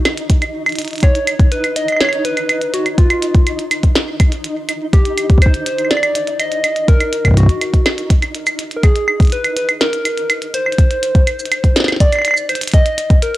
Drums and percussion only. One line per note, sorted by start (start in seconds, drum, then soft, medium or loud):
0.05 snare loud
0.05 closed hi-hat medium
0.05 claves medium
0.17 closed hi-hat soft
0.30 kick loud
0.30 closed hi-hat medium
0.42 closed hi-hat soft
0.42 claves medium
0.66 closed hi-hat soft
0.66 claves medium
0.69 closed hi-hat soft
0.72 closed hi-hat soft
0.76 closed hi-hat soft
0.79 closed hi-hat medium
0.82 closed hi-hat soft
0.85 closed hi-hat soft
0.88 closed hi-hat soft
0.91 closed hi-hat soft
0.93 closed hi-hat soft
0.96 closed hi-hat soft
0.98 closed hi-hat soft
1.00 kick loud
1.00 closed hi-hat soft
1.03 closed hi-hat medium
1.03 claves soft
1.15 closed hi-hat soft
1.27 closed hi-hat medium
1.27 claves medium
1.39 kick loud
1.39 closed hi-hat soft
1.52 closed hi-hat medium
1.64 closed hi-hat soft
1.64 claves soft
1.76 closed hi-hat medium
1.88 closed hi-hat soft
1.88 claves soft
1.92 claves soft
1.97 claves soft
2.01 snare loud
2.01 closed hi-hat medium
2.01 claves soft
2.05 claves medium
2.09 claves medium
2.13 closed hi-hat soft
2.25 closed hi-hat medium
2.37 closed hi-hat soft
2.37 claves medium
2.49 closed hi-hat medium
2.49 claves medium
2.61 closed hi-hat soft
2.74 closed hi-hat medium
2.86 closed hi-hat soft
2.86 claves medium
2.98 kick loud
2.98 closed hi-hat medium
3.10 closed hi-hat soft
3.10 claves medium
3.22 closed hi-hat medium
3.35 kick loud
3.35 closed hi-hat soft
3.47 closed hi-hat medium
3.47 claves soft
3.59 closed hi-hat soft
3.71 closed hi-hat medium
3.71 claves medium
3.83 kick medium
3.83 closed hi-hat soft
3.95 snare loud
3.95 closed hi-hat medium
4.20 kick loud
4.20 closed hi-hat medium
4.20 claves soft
4.32 closed hi-hat soft
4.44 closed hi-hat medium
4.69 closed hi-hat medium
4.69 claves soft
4.93 kick loud
4.93 closed hi-hat medium
5.05 closed hi-hat soft
5.18 closed hi-hat medium
5.18 claves soft
5.30 kick loud
5.30 closed hi-hat soft
5.38 kick medium
5.42 closed hi-hat medium
5.42 claves medium
5.46 kick medium
5.54 closed hi-hat soft
5.66 closed hi-hat medium
5.79 closed hi-hat soft
5.79 claves soft
5.85 claves soft
5.91 snare loud
5.91 closed hi-hat medium
5.91 claves soft
5.97 claves soft
6.03 closed hi-hat soft
6.03 claves medium
6.15 closed hi-hat medium
6.27 closed hi-hat soft
6.39 closed hi-hat medium
6.39 claves medium
6.52 closed hi-hat soft
6.64 closed hi-hat medium
6.64 claves medium
6.76 closed hi-hat soft
6.88 kick loud
6.88 closed hi-hat medium
7.00 closed hi-hat soft
7.00 claves medium
7.13 closed hi-hat medium
7.25 kick medium
7.25 closed hi-hat soft
7.25 claves medium
7.28 kick medium
7.31 kick medium
7.34 kick medium
7.37 kick medium
7.37 closed hi-hat medium
7.40 kick medium
7.43 kick medium
7.46 kick loud
7.46 closed hi-hat soft
7.61 closed hi-hat medium
7.61 claves soft
7.74 kick medium
7.74 closed hi-hat soft
7.86 snare loud
7.86 closed hi-hat medium
7.86 claves medium
7.98 closed hi-hat soft
8.10 kick loud
8.10 closed hi-hat medium
8.22 closed hi-hat soft
8.22 claves medium
8.35 closed hi-hat medium
8.47 closed hi-hat soft
8.47 claves medium
8.47 shaker medium
8.59 closed hi-hat medium
8.71 closed hi-hat soft
8.83 kick loud
8.83 closed hi-hat medium
8.83 claves soft
8.96 closed hi-hat soft
9.08 claves medium
9.20 kick loud
9.20 closed hi-hat soft
9.22 closed hi-hat soft
9.25 closed hi-hat soft
9.27 closed hi-hat soft
9.30 closed hi-hat soft
9.32 closed hi-hat medium
9.44 closed hi-hat soft
9.44 claves medium
9.56 closed hi-hat medium
9.69 closed hi-hat soft
9.69 claves medium
9.81 snare loud
9.81 closed hi-hat medium
9.93 closed hi-hat soft
10.05 closed hi-hat medium
10.05 claves medium
10.18 closed hi-hat soft
10.30 closed hi-hat medium
10.30 claves medium
10.42 closed hi-hat soft
10.54 closed hi-hat medium
10.66 claves medium
10.72 closed hi-hat soft
10.78 kick loud
10.78 closed hi-hat medium
10.91 closed hi-hat soft
11.03 closed hi-hat medium
11.15 kick loud
11.15 closed hi-hat soft
11.27 closed hi-hat medium
11.27 claves medium
11.40 shaker medium
11.46 closed hi-hat soft
11.52 closed hi-hat medium
11.52 claves medium
11.64 kick medium
11.64 closed hi-hat soft
11.76 snare loud
11.76 closed hi-hat medium
11.80 snare medium
11.84 snare medium
11.88 snare medium
11.88 closed hi-hat soft
11.88 claves medium
11.92 snare soft
11.96 snare soft
12.00 kick loud
12.00 closed hi-hat medium
12.13 closed hi-hat soft
12.13 claves soft
12.16 claves soft
12.19 claves soft
12.22 closed hi-hat medium
12.22 claves medium
12.25 claves medium
12.28 claves medium
12.31 claves medium
12.34 claves medium
12.34 shaker medium
12.49 closed hi-hat medium
12.49 claves medium
12.55 closed hi-hat medium
12.61 closed hi-hat medium
12.64 closed hi-hat medium
12.68 closed hi-hat medium
12.72 kick loud
12.72 closed hi-hat soft
12.74 closed hi-hat medium
12.86 closed hi-hat soft
12.98 closed hi-hat medium
13.10 kick loud
13.10 closed hi-hat soft
13.22 closed hi-hat medium